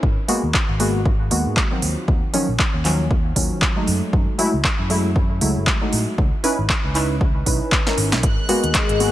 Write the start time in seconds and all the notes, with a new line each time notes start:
0.03 G#1, kick
0.28 G#3 A#3 B3 F#4, open hi-hat
0.43 D#2
0.54 kick, clap
0.69 G#1
0.80 G#3 A#3 B3 F#4, open hi-hat
1.06 kick
1.31 D#2 G#3 A#3 B3 F#4, open hi-hat
1.46 G#2
1.57 kick, clap
1.71 D#3 F3 F#3 C4
1.82 D#2, open hi-hat
2.08 D#2, kick
2.33 D#3 F3 F#3 C#4, open hi-hat
2.48 A#1
2.59 kick, clap
2.74 D#2
2.85 D#3 F3 F#3 C#4, clap, open hi-hat
3.11 kick
3.36 D#2 D#3 F3 F#3 C#4, kick, open hi-hat
3.62 kick, clap
3.76 F#3 G#3 A3 D#4
3.87 F#2, open hi-hat
4.13 F#2, kick
4.38 F#3 G#3 A3 E4, open hi-hat
4.53 C#2
4.64 kick, clap
4.79 F#2
4.90 F#3 G#3 A3 E4, open hi-hat
5.16 kick
5.41 C#2 F#3 G#3 A3 E4, open hi-hat
5.56 F#1
5.67 kick, clap
5.81 F#3 G#3 A3 D#4
5.93 A2, open hi-hat
6.18 C#2, kick
6.44 C#4 D#4 E4 B4, open hi-hat
6.59 G#1
6.70 kick, clap
6.84 C#2
6.95 C#4 D#4 E4 B4, clap, open hi-hat
7.21 kick
7.46 B1 C#4 D#4 E4 B4, kick, open hi-hat
7.72 kick, clap
7.86 C#4 D#4 E4 A#4, snare
7.98 G#1, open hi-hat
8.12 B1, snare
8.23 G#1 G#3 G#4 A#4 D#5 F#6, kick, closed hi-hat
8.49 G#3 A#3 B3 F#4, open hi-hat
8.64 D#2, closed hi-hat
8.75 kick, clap, closed hi-hat
8.89 G#1, closed hi-hat
9.00 G#3 A#3 B3 F#4, open hi-hat